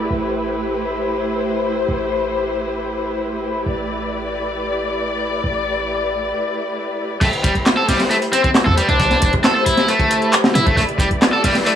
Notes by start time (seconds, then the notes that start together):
Already playing: A3 E4 G4 B4
0.11 A1 C5
1.89 A1
3.66 A1 D5
5.44 A1
7.21 A1 A3 E4 G4 B4 C5, kick, closed hi-hat, crash
7.33 closed hi-hat
7.44 E1 G3, kick, closed hi-hat
7.55 A1, closed hi-hat
7.66 snare, clap, closed hi-hat
7.77 A4
7.88 A1 G3, snare, closed hi-hat, open hi-hat
8.00 snare, closed hi-hat
8.10 A3, closed hi-hat
8.22 closed hi-hat
8.33 C4, closed hi-hat
8.44 C4, kick, closed hi-hat
8.55 snare, clap, closed hi-hat
8.66 E2 A4, kick
8.77 G3, closed hi-hat
8.89 C2 D4, closed hi-hat
9.00 kick, closed hi-hat
9.11 snare, closed hi-hat
9.22 E1, kick, closed hi-hat
9.33 A1, kick, closed hi-hat
9.44 A4, snare, clap, closed hi-hat
9.55 A4
9.66 A1 E4, closed hi-hat
9.77 snare, closed hi-hat
9.88 A3, closed hi-hat
9.99 kick, closed hi-hat
10.10 closed hi-hat
10.22 closed hi-hat
10.33 clap, closed hi-hat
10.44 snare
10.55 A2 E4, closed hi-hat
10.66 G1 A3, kick, closed hi-hat
10.77 A1 A3 D5, kick, closed hi-hat
10.89 closed hi-hat
10.98 E1 G3, kick, closed hi-hat
11.11 A1, closed hi-hat
11.22 snare, clap, closed hi-hat
11.33 A4
11.44 A1 G3, snare, closed hi-hat, open hi-hat
11.55 snare, closed hi-hat
11.66 A3, closed hi-hat